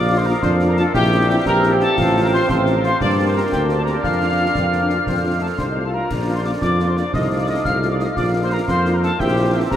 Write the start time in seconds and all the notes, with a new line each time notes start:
Already playing: A#1 F3 A#3 F4 A#4 D5 F5 D6
0.09 A#3 D4 F4
0.17 C5 C6
0.25 A#3 D4 F4 A#4 A#5
0.42 F2 D4 C5 C6, concert bass drum, snare
0.60 A#3 D4 F4, snare
0.68 A#4 A#5
0.77 A#3 D4 F4 A4 A5, snare
0.94 A#1 E3 C4 E4 G4 C5 E5 G5, concert bass drum, snare
1.13 C4 E4
1.29 C4 E4 G4 G5
1.46 A#1 G4 A#4 A#5, concert bass drum, snare
1.63 C4 E4, snare
1.72 G4 G5
1.80 C4 E4 A4 A5, snare
1.97 A1 F3 F4 F5, concert bass drum, snare, crash
2.15 A3 C4 F4
2.24 A#4 A#5
2.32 A3 C4 F4 C5 C6
2.48 A1 C4 C5 C6, concert bass drum, snare
2.66 A3 C4 F4, snare
2.76 A#4 A#5
2.84 A3 C4 F4 C5 C6, snare
3.00 G2 A#3 D4 A#4 D5 D6, concert bass drum, snare
3.18 A#3 D4 G4
3.26 C5 C6
3.34 A#3 D4 G4 A#4 A#5
3.51 D2 G4 G5, concert bass drum, snare
3.69 A#3 D4 G4, snare
3.78 A4 A5
3.85 A#3 D4 G4 A#4 A#5, snare
4.03 F2 D4 F5 F6, concert bass drum, snare
4.21 A#3 D4 F4
4.38 A#3 D4 F4
4.55 F2 C4, concert bass drum, snare
4.65 D4
4.73 A#3 D4 F4, snare
4.80 D4
4.90 A#3 D4 F4, snare
5.07 F2 C4 A4 C5, concert bass drum, snare
5.16 D4
5.24 A3 C4 F4
5.33 D#4
5.41 A3 C4 F4 A4 A5
5.57 C2 D4 C5 C6, concert bass drum, snare
5.67 D#4
5.76 A3 C4 F4
5.84 F4 A4 A5
5.92 A3 C4 F4 A#4 A#5
6.09 A#1 F3 D4 A#4 D5, concert bass drum, snare, crash
6.27 A#3 D4 F4
6.35 C5 C6
6.44 A#3 D4 F4 D5 D6
6.61 F2 F4 D5 D6, concert bass drum, snare
6.78 A#3 D4 F4, snare
6.88 C5 C6
6.96 A#3 D4 F4 D5 D6, snare
7.13 C2 A3 D#4 A4 D#5 F5 D#6, concert bass drum, snare
7.31 A3 C4 F4
7.40 D5 D6
7.47 A3 C4 F4 D#5 D#6
7.64 C2 F5 F6, concert bass drum, snare
7.82 A3 C4 F4, snare
7.91 D5 D6
7.99 A3 C4 F4 D#5 D#6, snare
8.16 A#1 F3 A#3 F4 A#4 D5 D6, concert bass drum, snare
8.35 A#3 D4 F4
8.43 C5 C6
8.52 A#3 D4 F4 A#4 A#5
8.68 F2 F4 C5 C6, concert bass drum, snare
8.85 A#3 D4 F4, snare
8.94 A#4 A#5
9.03 A#3 D4 F4 A4 A5, snare
9.19 A#1 E3 C4 E4 G4 C5 E5 G5, concert bass drum, snare
9.37 C4 E4
9.53 C4 E4 G4 G5
9.70 A#1 G4 A#4 A#5, concert bass drum, snare